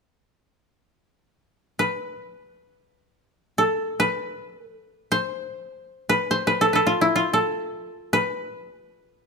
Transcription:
koto
1.79 B4
3.58 A4
4.00 B4
4.56 A#4
4.69 A4
5.12 C5
6.09 B4
6.31 C5
6.47 B4
6.61 A4
6.73 A4 B4
6.87 F4
7.01 E4
7.16 F4
7.33 A4
8.13 B4

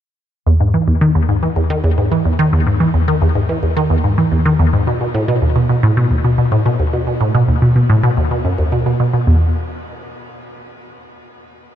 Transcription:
synth arpeggio sound
0.47 E2
0.60 G#2
0.74 E3
0.88 E2
1.01 D#3
1.15 E2
1.29 G#2
1.43 E3
1.56 E2
1.70 D#3
1.84 E2
1.98 G#2
2.12 E3
2.25 E2
2.39 D#3
2.53 E2
2.67 G#2
2.80 E3
2.94 E2
3.08 D#3
3.22 E2
3.35 G#2
3.49 E3
3.63 E2
3.77 D#3
3.90 E2
4.04 G#2
4.18 E3
4.32 E2
4.46 D#3
4.59 E2
4.73 G#2
4.87 B2
5.01 B2
5.14 A2
5.28 B2
5.42 D#2
5.56 B2
5.69 B2
5.83 A2
5.97 B2
6.11 D#2
6.25 B2
6.38 B2
6.52 A2
6.66 B2
6.79 D#2
6.93 B2
7.07 B2
7.21 A2
7.35 B2
7.48 D#2
7.62 B2
7.76 B2
7.90 A2
8.03 B2
8.17 D#2
8.31 B2
8.45 F#2
8.58 D#2
8.72 B2
8.86 B2
9.00 B2
9.13 B2
9.27 E2

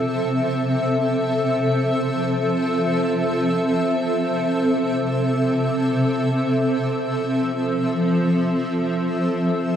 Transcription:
ambient pad
Already playing: C3 C4 A4 E5
1.34 F3
3.99 C3
6.65 F3
9.29 C3

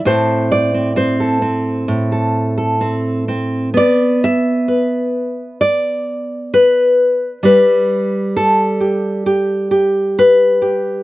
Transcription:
nylon-string guitar
0.05 A2 C4 A4 C5
0.52 D5
0.74 C4
0.96 C4 C5
1.20 A4
1.42 C4
1.88 A2
2.12 A4
2.58 A4
2.81 C4
3.28 C4
3.74 B3 D5
4.24 E5
4.68 B4
5.61 D5
6.54 B4
7.43 G3 B4
8.36 A4
8.80 G4
9.26 G4
9.71 G4
10.19 B4
10.62 G4

